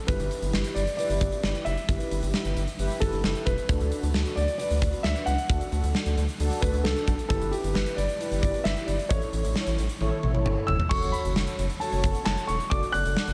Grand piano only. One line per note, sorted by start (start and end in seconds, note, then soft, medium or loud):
0.07 0.71 B4 medium
0.74 0.96 D5 medium
0.97 1.68 D5 medium
1.65 3.05 E5 loud
3.00 3.47 A4 medium
3.45 4.32 B4 loud
4.36 4.57 D5 loud
4.58 5.05 D5 loud
5.03 5.27 E5 loud
5.26 6.66 F#5 loud
6.61 6.85 B4 medium
6.84 7.27 A4 medium
7.29 7.53 A4 medium
7.51 7.75 G4 medium
7.74 7.98 B4 medium
7.96 8.39 D5 loud
8.41 8.65 D5 medium
8.64 8.88 E5 medium
8.87 9.11 D5 medium
9.09 10.41 C#5 medium
10.67 10.91 E6 loud
10.89 11.13 C#6 loud
11.12 11.55 B5 medium
11.80 12.23 A5 medium
12.25 12.47 A5 medium
12.47 12.71 C#6 medium
12.70 12.94 D6 loud
12.92 13.33 F#6 loud